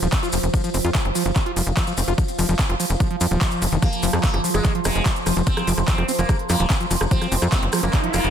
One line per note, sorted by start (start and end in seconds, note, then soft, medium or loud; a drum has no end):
0.00 0.09 D#1 medium
0.00 8.30 F3 medium
0.00 0.08 F3 loud
0.00 closed hi-hat soft
0.00 maracas soft
0.12 0.16 C4 medium
0.12 kick loud
0.12 clap loud
0.12 closed hi-hat medium
0.12 maracas medium
0.23 0.28 F4 loud
0.23 closed hi-hat soft
0.23 maracas soft
0.32 0.39 F1 medium
0.32 0.38 F3 medium
0.32 open hi-hat loud
0.32 maracas medium
0.43 0.50 F1 medium
0.43 closed hi-hat soft
0.43 maracas soft
0.54 0.62 F3 medium
0.54 kick loud
0.54 closed hi-hat medium
0.54 maracas medium
0.64 0.69 F3 loud
0.64 closed hi-hat soft
0.64 maracas soft
0.74 0.80 F1 loud
0.74 0.77 C4 medium
0.74 open hi-hat loud
0.74 maracas medium
0.84 0.91 F2 medium
0.84 0.90 F4 loud
0.84 closed hi-hat soft
0.84 maracas soft
0.95 1.00 F3 medium
0.95 kick loud
0.95 clap loud
0.95 closed hi-hat medium
0.95 maracas medium
1.05 1.11 F#1 medium
1.05 closed hi-hat soft
1.15 1.23 F3 medium
1.15 open hi-hat loud
1.15 maracas loud
1.26 1.32 F#1 medium
1.26 1.31 F3 loud
1.26 closed hi-hat soft
1.26 maracas soft
1.35 1.39 C4 medium
1.35 kick loud
1.35 clap medium
1.35 closed hi-hat medium
1.35 maracas medium
1.46 1.51 F4 loud
1.46 closed hi-hat soft
1.56 1.63 F1 medium
1.56 1.62 F3 medium
1.56 open hi-hat loud
1.56 maracas loud
1.67 1.73 F1 medium
1.67 closed hi-hat soft
1.67 maracas soft
1.77 1.85 F3 medium
1.77 kick loud
1.77 clap loud
1.77 closed hi-hat medium
1.77 maracas medium
1.87 1.93 F3 loud
1.87 closed hi-hat soft
1.87 maracas soft
1.97 2.04 F1 medium
1.97 2.01 C4 medium
1.97 open hi-hat loud
1.97 maracas loud
2.08 2.14 F1 medium
2.08 2.13 F4 loud
2.08 closed hi-hat soft
2.08 maracas soft
2.18 2.23 F3 medium
2.18 kick loud
2.18 closed hi-hat medium
2.18 maracas medium
2.28 closed hi-hat soft
2.28 maracas soft
2.39 2.45 F1 loud
2.39 2.47 F3 medium
2.39 open hi-hat loud
2.39 maracas medium
2.49 2.55 F1 medium
2.49 2.54 F3 loud
2.49 closed hi-hat soft
2.49 maracas soft
2.59 2.62 C4 medium
2.59 kick loud
2.59 clap loud
2.59 closed hi-hat medium
2.59 maracas soft
2.69 2.76 F1 medium
2.69 2.75 F4 loud
2.69 closed hi-hat soft
2.80 2.85 F3 medium
2.80 open hi-hat loud
2.80 maracas loud
2.90 2.96 F1 medium
2.90 closed hi-hat soft
2.90 maracas soft
3.00 3.08 F3 medium
3.00 kick loud
3.00 closed hi-hat medium
3.00 maracas medium
3.10 3.16 F3 loud
3.10 closed hi-hat soft
3.21 3.27 F2 medium
3.21 3.26 F3 medium
3.21 open hi-hat loud
3.21 maracas loud
3.31 3.37 D#1 medium
3.31 3.39 F3 medium
3.31 closed hi-hat soft
3.31 maracas soft
3.41 kick loud
3.41 clap loud
3.41 closed hi-hat medium
3.41 maracas medium
3.51 closed hi-hat soft
3.51 maracas soft
3.62 3.68 F1 medium
3.62 3.65 F#3 medium
3.62 open hi-hat loud
3.62 maracas medium
3.72 3.78 F1 medium
3.72 3.77 D#3 loud
3.72 closed hi-hat soft
3.72 maracas soft
3.82 3.88 F3 medium
3.82 4.05 A#3 medium
3.82 kick loud
3.82 cross-stick soft
3.82 closed hi-hat medium
3.82 maracas medium
3.93 closed hi-hat soft
3.93 maracas soft
4.03 4.09 F1 loud
4.03 4.11 F3 medium
4.03 open hi-hat loud
4.03 maracas medium
4.13 4.20 F2 medium
4.13 4.19 F3 loud
4.13 cross-stick medium
4.13 closed hi-hat soft
4.13 maracas soft
4.24 4.40 A#3 loud
4.24 4.27 C4 medium
4.24 kick loud
4.24 clap loud
4.24 closed hi-hat medium
4.24 maracas soft
4.34 4.40 F#1 medium
4.34 4.39 F3 medium
4.34 cross-stick soft
4.34 closed hi-hat soft
4.44 4.49 F3 medium
4.44 open hi-hat loud
4.44 maracas medium
4.54 4.61 F#1 medium
4.54 4.71 G#3 loud
4.54 cross-stick soft
4.54 closed hi-hat soft
4.54 maracas soft
4.65 4.73 F3 medium
4.65 kick loud
4.65 clap medium
4.65 closed hi-hat medium
4.65 maracas medium
4.75 4.80 F3 loud
4.75 closed hi-hat soft
4.85 4.91 F1 loud
4.85 5.02 G#3 medium
4.85 4.88 C4 medium
4.85 cross-stick medium
4.85 open hi-hat loud
4.85 maracas loud
4.95 5.02 F1 medium
4.95 5.01 F3 medium
4.95 closed hi-hat soft
4.95 maracas soft
5.06 5.11 F3 medium
5.06 kick loud
5.06 cross-stick soft
5.06 clap loud
5.06 closed hi-hat medium
5.06 maracas soft
5.16 closed hi-hat soft
5.16 maracas soft
5.26 5.33 F1 medium
5.26 5.34 F3 medium
5.26 cross-stick soft
5.26 open hi-hat loud
5.26 maracas medium
5.37 5.43 F1 medium
5.37 5.42 F3 loud
5.37 closed hi-hat soft
5.37 maracas soft
5.47 5.50 C4 medium
5.47 5.69 C4 loud
5.47 kick loud
5.47 closed hi-hat loud
5.47 maracas medium
5.57 5.62 F3 medium
5.57 cross-stick medium
5.57 closed hi-hat soft
5.57 maracas soft
5.67 5.74 F1 loud
5.67 5.73 F3 medium
5.67 open hi-hat loud
5.67 maracas medium
5.78 5.84 F1 medium
5.78 cross-stick soft
5.78 closed hi-hat soft
5.78 maracas soft
5.88 5.96 F3 medium
5.88 6.05 C4 medium
5.88 kick loud
5.88 clap loud
5.88 closed hi-hat medium
5.88 maracas soft
5.98 6.04 F1 medium
5.98 6.04 F3 loud
5.98 cross-stick soft
5.98 closed hi-hat soft
6.08 6.12 C4 medium
6.08 open hi-hat loud
6.08 maracas medium
6.19 6.25 F1 medium
6.19 6.24 F3 medium
6.19 6.36 A#3 loud
6.19 closed hi-hat soft
6.19 maracas soft
6.29 6.34 F3 medium
6.29 kick loud
6.29 cross-stick medium
6.29 closed hi-hat medium
6.29 maracas medium
6.39 closed hi-hat soft
6.49 6.56 F2 loud
6.49 6.58 F3 medium
6.49 6.66 A#3 loud
6.49 cross-stick soft
6.49 open hi-hat loud
6.49 maracas medium
6.60 6.66 D#1 medium
6.60 6.65 F3 loud
6.60 closed hi-hat soft
6.60 maracas soft
6.70 6.73 C4 medium
6.70 kick loud
6.70 cross-stick soft
6.70 clap loud
6.70 closed hi-hat medium
6.70 maracas medium
6.80 6.86 F3 medium
6.80 closed hi-hat soft
6.80 maracas soft
6.91 6.97 F1 medium
6.91 6.96 F3 medium
6.91 open hi-hat loud
6.91 maracas medium
7.01 7.07 F1 medium
7.01 cross-stick medium
7.01 closed hi-hat soft
7.01 maracas soft
7.11 7.19 F3 medium
7.11 7.34 C4 loud
7.11 kick loud
7.11 closed hi-hat loud
7.11 riser medium
7.11 maracas medium
7.21 7.27 F3 loud
7.21 cross-stick soft
7.21 closed hi-hat soft
7.21 maracas soft
7.32 7.38 F1 loud
7.32 7.35 C4 medium
7.32 open hi-hat loud
7.32 maracas medium
7.42 7.48 F2 medium
7.42 7.47 F3 medium
7.42 cross-stick soft
7.42 closed hi-hat soft
7.42 maracas soft
7.52 7.58 F3 medium
7.52 7.69 C4 medium
7.52 kick loud
7.52 clap loud
7.52 closed hi-hat medium
7.52 maracas soft
7.63 7.69 F#1 medium
7.63 closed hi-hat soft
7.72 7.81 F3 medium
7.72 cross-stick medium
7.72 open hi-hat loud
7.72 maracas medium
7.83 7.89 F#1 medium
7.83 7.88 F3 loud
7.83 8.00 A#3 loud
7.83 closed hi-hat soft
7.83 maracas soft
7.93 7.97 C4 medium
7.93 kick loud
7.93 cross-stick soft
7.93 clap medium
7.93 closed hi-hat medium
7.93 maracas medium
8.04 8.09 F3 medium
8.04 closed hi-hat soft
8.13 8.20 F1 medium
8.13 8.19 F3 medium
8.13 8.30 A#3 loud
8.13 cross-stick soft
8.13 open hi-hat loud
8.13 maracas medium
8.24 8.30 F1 medium
8.24 closed hi-hat soft
8.24 maracas soft